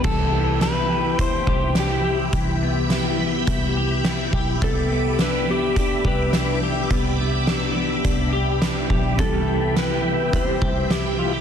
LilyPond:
<<
  \new Staff \with { instrumentName = "String machine" } { \time 4/4 \key c \major \tempo 4 = 105 << { <g' e'' b''>1~ | <g' e'' b''>1~ | <g' e'' b''>1~ | <g' e'' b''>1~ |
<g' e'' b''>1 | } \\ { g''1~ | g''1 | d'''1~ | d'''1 |
g''1 | } >> }
  \new Staff \with { instrumentName = "Electric slide guitar" } { \time 4/4 \key c \major a'4 b'4 c''4 g'8. r16 | r1 | a'4 b'8 g'8 g'8 b'4 r8 | r1 |
a'4 b'4 c''4 g'8. r16 | }
  \new Staff \with { instrumentName = "Clean electric guitar" } { \time 4/4 \key c \major e8 b8 d'16 e'8. e'8 g'8 d'16 e'16 g'8 | e8 b8 e'8 b8 e'8 g'8 e'8 g'8 | b8 b8 d'8 b8 d'8 g'8 d'8 g'8 | b8 b8 d'8 b8 d'8 g'8 d'8 g'8 |
e8 b8 e'4 e'8 g'8 e'8 f'16 g'16 | }
  \new Staff \with { instrumentName = "Clean electric guitar" } { \time 4/4 \key c \major r1 | r1 | r1 | r1 |
<c g b e' g'>2 <c g e' g'>4. <b e' g'>8 | }
  \new Staff \with { instrumentName = "Picked electric bass" } { \clef bass \time 4/4 \key c \major c,2~ c,8 c,4. | c,2 c,4. b,,8 | c,2~ c,8 c,4. | c,2 c,4. b,,8 |
c,2~ c,8 c,4. | }
  \new DrumStaff \with { instrumentName = "Drums" } \drummode { \time 4/4 <cymc bd>4 <hh sn>4 <hh bd>8 bd8 <hh sn>4 | <hh bd>4 <hh sn>4 <hh bd>4 <hh sn>8 bd8 | <hh bd>4 <hh sn>4 <hh bd>8 bd8 <hh sn>4 | <hh bd>4 <hh sn>4 <hh bd>4 <hh sn>8 bd8 |
<hh bd>4 <hh sn>4 <hh bd>8 bd8 <hh sn>4 | }
>>